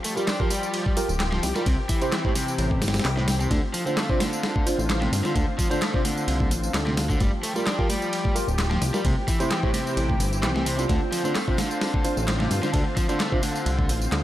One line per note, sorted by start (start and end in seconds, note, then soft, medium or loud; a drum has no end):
0.00 1.64 F3 medium
0.00 3.47 G4 medium
0.04 0.15 A3 medium
0.04 open hi-hat medium
0.04 ride medium
0.04 tambourine medium
0.16 0.25 G3 medium
0.16 0.27 F4 medium
0.16 0.27 G4 medium
0.16 0.27 A#4 medium
0.16 tambourine soft
0.27 0.39 D4 medium
0.27 snare loud
0.27 clap loud
0.27 open hi-hat medium
0.27 tambourine soft
0.40 0.49 F3 medium
0.40 0.50 F4 medium
0.40 0.50 G4 medium
0.40 0.50 A#4 medium
0.40 kick medium
0.50 0.96 G3 medium
0.50 open hi-hat medium
0.50 ride medium
0.50 tambourine medium
0.63 tambourine soft
0.74 ride medium
0.74 tambourine soft
0.86 kick loud
0.97 1.08 F4 medium
0.97 1.08 G4 medium
0.97 1.08 A#4 loud
0.97 open hi-hat medium
0.97 ride medium
0.97 tambourine medium
1.09 1.40 D1 medium
1.09 tambourine soft
1.20 snare loud
1.20 clap loud
1.20 ride medium
1.32 1.41 F3 medium
1.32 snare medium
1.43 1.53 C2 medium
1.43 snare medium
1.43 open hi-hat medium
1.43 ride medium
1.43 tambourine medium
1.55 1.66 G3 loud
1.55 1.62 F4 medium
1.55 1.62 G4 medium
1.55 1.62 A#4 medium
1.55 snare medium
1.55 tambourine soft
1.66 1.76 C2 loud
1.66 1.76 C3 medium
1.66 3.49 E3 medium
1.66 3.49 C4 medium
1.66 kick loud
1.66 ride medium
1.66 tambourine soft
1.89 1.99 E3 medium
1.89 kick medium
1.89 open hi-hat medium
1.89 ride medium
1.89 tambourine medium
2.01 2.10 C3 medium
2.01 2.11 E4 loud
2.01 2.11 G4 medium
2.01 2.11 C5 loud
2.01 ride soft
2.01 tambourine soft
2.12 2.24 E3 medium
2.12 snare loud
2.12 clap loud
2.12 ride medium
2.12 tambourine soft
2.25 2.33 A2 medium
2.25 2.31 E4 medium
2.25 2.31 G4 medium
2.25 2.31 C5 medium
2.25 kick loud
2.35 2.80 C3 medium
2.35 snare soft
2.35 open hi-hat medium
2.35 ride medium
2.35 tambourine medium
2.48 tambourine soft
2.58 2.82 A1 medium
2.58 ride medium
2.58 tambourine soft
2.71 kick medium
2.81 3.01 G1 medium
2.81 snare medium
2.81 open hi-hat medium
2.81 tambourine medium
2.88 snare medium
2.88 open hi-hat medium
2.94 snare medium
2.94 open hi-hat medium
2.94 tambourine soft
2.99 snare medium
2.99 open hi-hat medium
3.04 3.48 C2 loud
3.04 snare loud
3.04 clap loud
3.04 open hi-hat medium
3.04 tambourine soft
3.17 3.26 A2 medium
3.17 snare soft
3.28 snare loud
3.28 open hi-hat medium
3.28 tambourine medium
3.40 3.50 C3 loud
3.40 tambourine soft
3.50 3.61 D2 loud
3.50 7.16 D3 medium
3.50 3.61 D3 medium
3.50 7.16 C4 medium
3.50 7.16 F4 medium
3.50 kick loud
3.50 ride medium
3.50 tambourine soft
3.50 high conga medium
3.74 3.84 F3 medium
3.74 open hi-hat medium
3.74 ride medium
3.74 tambourine medium
3.86 3.95 D3 medium
3.86 3.96 D4 medium
3.86 3.96 F4 medium
3.86 3.96 C5 medium
3.86 tambourine soft
3.86 high conga medium
3.96 4.08 A3 medium
3.96 snare loud
3.96 clap loud
3.96 open hi-hat medium
3.96 tambourine soft
4.09 4.18 C3 medium
4.09 4.19 D4 medium
4.09 4.19 F4 medium
4.09 4.19 C5 medium
4.09 kick medium
4.20 4.65 D3 medium
4.20 snare loud
4.20 open hi-hat medium
4.20 tambourine medium
4.20 high conga loud
4.33 tambourine soft
4.43 snare loud
4.43 open hi-hat medium
4.43 tambourine soft
4.56 kick medium
4.56 high conga medium
4.67 4.78 D4 medium
4.67 4.78 F4 medium
4.67 4.78 C5 loud
4.67 open hi-hat medium
4.67 ride medium
4.67 tambourine medium
4.78 5.09 A1 loud
4.78 tambourine soft
4.90 snare loud
4.90 clap loud
4.90 ride medium
4.90 tambourine soft
5.01 5.10 C3 medium
5.01 snare medium
5.01 high conga loud
5.12 5.22 G2 medium
5.12 snare medium
5.12 open hi-hat medium
5.12 ride medium
5.12 tambourine medium
5.24 5.34 D3 loud
5.24 5.31 D4 medium
5.24 5.31 F4 medium
5.24 5.31 C5 medium
5.24 snare medium
5.24 tambourine soft
5.35 5.46 D2 loud
5.35 5.45 D3 medium
5.35 kick loud
5.35 ride medium
5.35 tambourine soft
5.35 high conga loud
5.58 5.68 F3 medium
5.58 kick loud
5.58 open hi-hat medium
5.58 ride medium
5.58 tambourine medium
5.70 5.79 D3 medium
5.70 5.81 D4 loud
5.70 5.81 F4 medium
5.70 5.81 C5 loud
5.70 ride soft
5.70 tambourine soft
5.70 high conga medium
5.81 5.93 A3 medium
5.81 snare loud
5.81 clap loud
5.81 ride medium
5.81 tambourine soft
5.94 6.03 C3 medium
5.94 6.00 D4 medium
5.94 6.00 F4 medium
5.94 6.00 C5 medium
5.94 kick loud
6.05 6.50 D3 medium
6.05 open hi-hat medium
6.05 ride medium
6.05 tambourine medium
6.05 high conga loud
6.18 tambourine soft
6.28 6.52 C2 medium
6.28 ride medium
6.28 tambourine soft
6.40 kick loud
6.40 high conga medium
6.51 6.70 A1 medium
6.51 open hi-hat medium
6.51 ride medium
6.51 tambourine medium
6.63 tambourine soft
6.74 7.17 D2 loud
6.74 snare loud
6.74 clap loud
6.74 ride medium
6.74 tambourine soft
6.85 6.95 C3 medium
6.85 snare soft
6.85 high conga medium
6.97 snare loud
6.97 open hi-hat medium
6.97 tambourine medium
7.10 7.20 D3 loud
7.10 kick medium
7.10 tambourine soft
7.19 7.30 G1 loud
7.19 9.02 F3 medium
7.19 7.30 G3 medium
7.19 9.03 G4 medium
7.19 kick loud
7.19 ride medium
7.19 tambourine soft
7.19 high conga loud
7.43 7.53 A3 medium
7.43 open hi-hat medium
7.43 ride medium
7.43 tambourine medium
7.55 7.64 G3 medium
7.55 7.65 F4 medium
7.55 7.65 G4 medium
7.55 7.65 A#4 medium
7.55 tambourine soft
7.55 high conga medium
7.66 7.78 D4 medium
7.66 snare loud
7.66 clap loud
7.66 open hi-hat medium
7.66 tambourine soft
7.79 7.87 F3 medium
7.79 7.88 F4 medium
7.79 7.88 G4 medium
7.79 7.88 A#4 medium
7.79 kick medium
7.89 8.34 G3 medium
7.89 open hi-hat medium
7.89 ride medium
7.89 tambourine medium
7.89 high conga medium
8.02 tambourine soft
8.13 ride medium
8.13 tambourine soft
8.24 kick loud
8.24 high conga medium
8.35 8.47 F4 medium
8.35 8.47 G4 medium
8.35 8.47 A#4 loud
8.35 open hi-hat medium
8.35 ride medium
8.35 tambourine medium
8.48 8.79 D1 medium
8.48 tambourine soft
8.58 snare loud
8.58 clap loud
8.58 ride medium
8.58 tambourine soft
8.71 8.80 F3 medium
8.71 snare medium
8.71 high conga loud
8.81 8.92 C2 medium
8.81 snare medium
8.81 open hi-hat medium
8.81 ride medium
8.81 tambourine medium
8.94 9.04 G3 loud
8.94 9.00 F4 medium
8.94 9.00 G4 medium
8.94 9.00 A#4 medium
8.94 snare medium
8.94 tambourine soft
9.04 9.15 C2 loud
9.04 9.15 C3 medium
9.04 10.87 E3 medium
9.04 14.23 C4 medium
9.04 10.87 G4 medium
9.04 kick loud
9.04 ride medium
9.04 tambourine soft
9.04 high conga medium
9.28 9.38 E3 medium
9.28 kick loud
9.28 open hi-hat medium
9.28 ride medium
9.28 tambourine medium
9.40 9.49 C3 medium
9.40 9.50 E4 loud
9.40 9.50 G4 medium
9.40 9.50 C5 loud
9.40 ride soft
9.40 tambourine soft
9.40 high conga medium
9.51 9.63 E3 medium
9.51 snare loud
9.51 clap loud
9.51 ride medium
9.63 9.72 A2 medium
9.63 9.69 E4 medium
9.63 9.69 G4 medium
9.63 9.69 C5 medium
9.63 kick medium
9.73 10.19 C3 medium
9.73 snare soft
9.73 open hi-hat medium
9.73 ride medium
9.73 tambourine medium
9.73 high conga medium
9.87 tambourine soft
9.97 10.16 A1 medium
9.97 ride medium
9.97 tambourine soft
10.09 kick medium
10.09 high conga medium
10.20 10.44 G1 medium
10.20 open hi-hat medium
10.20 ride medium
10.20 tambourine medium
10.33 tambourine soft
10.43 10.86 C2 loud
10.43 10.49 E3 medium
10.43 snare loud
10.43 clap loud
10.43 ride medium
10.43 tambourine soft
10.55 10.64 E3 loud
10.55 snare soft
10.55 high conga loud
10.66 10.77 C3 loud
10.66 open hi-hat medium
10.66 ride medium
10.66 tambourine medium
10.78 10.84 C3 medium
10.78 11.22 D4 medium
10.78 11.22 F4 medium
10.78 11.22 C5 medium
10.78 tambourine soft
10.89 10.99 D2 loud
10.89 10.99 D3 medium
10.89 14.23 D3 medium
10.89 14.23 F4 medium
10.89 kick loud
10.89 ride medium
10.89 tambourine soft
10.89 high conga medium
11.12 11.22 F3 medium
11.12 open hi-hat medium
11.12 ride medium
11.12 tambourine medium
11.24 11.33 D3 medium
11.24 11.34 D4 medium
11.24 11.34 F4 medium
11.24 11.34 C5 medium
11.24 tambourine soft
11.24 high conga medium
11.35 11.47 A3 medium
11.35 snare loud
11.35 clap loud
11.35 open hi-hat medium
11.35 tambourine soft
11.48 11.56 C3 medium
11.48 11.58 D4 medium
11.48 11.58 F4 medium
11.48 11.58 C5 medium
11.48 kick loud
11.58 12.03 D3 medium
11.58 snare loud
11.58 open hi-hat medium
11.58 tambourine medium
11.58 high conga medium
11.71 tambourine soft
11.81 snare loud
11.81 open hi-hat medium
11.81 tambourine soft
11.94 kick loud
11.94 high conga medium
12.04 12.16 D4 medium
12.04 12.16 F4 medium
12.04 12.16 C5 loud
12.04 open hi-hat medium
12.04 ride medium
12.04 tambourine medium
12.17 12.48 A1 loud
12.17 tambourine soft
12.28 snare loud
12.28 clap loud
12.28 ride medium
12.28 tambourine soft
12.40 12.49 C3 medium
12.40 snare medium
12.40 high conga loud
12.50 12.61 G2 medium
12.50 snare medium
12.50 open hi-hat medium
12.50 ride medium
12.50 tambourine medium
12.63 12.72 D3 loud
12.63 12.69 D4 medium
12.63 12.69 F4 medium
12.63 12.69 C5 medium
12.63 snare medium
12.63 tambourine soft
12.73 12.84 D2 loud
12.73 12.84 D3 medium
12.73 kick loud
12.73 ride medium
12.73 tambourine soft
12.73 high conga medium
12.97 13.07 F3 medium
12.97 kick loud
12.97 open hi-hat medium
12.97 ride medium
12.97 tambourine medium
13.09 13.18 D3 medium
13.09 13.19 D4 loud
13.09 13.19 F4 medium
13.09 13.19 C5 loud
13.09 ride soft
13.09 tambourine soft
13.09 high conga medium
13.20 13.32 A3 medium
13.20 snare loud
13.20 clap loud
13.20 ride medium
13.20 tambourine soft
13.32 13.41 C3 medium
13.32 13.38 D4 medium
13.32 13.38 F4 medium
13.32 13.38 C5 medium
13.32 kick loud
13.42 13.88 D3 medium
13.42 open hi-hat medium
13.42 ride medium
13.42 tambourine medium
13.42 high conga medium
13.56 tambourine soft
13.66 13.90 C2 medium
13.66 ride medium
13.66 tambourine soft
13.79 kick loud
13.79 high conga medium
13.89 14.08 A1 medium
13.89 open hi-hat medium
13.89 ride medium
13.89 tambourine medium
14.02 tambourine soft
14.12 14.23 D2 loud
14.12 snare loud
14.12 clap loud
14.12 ride medium
14.12 tambourine soft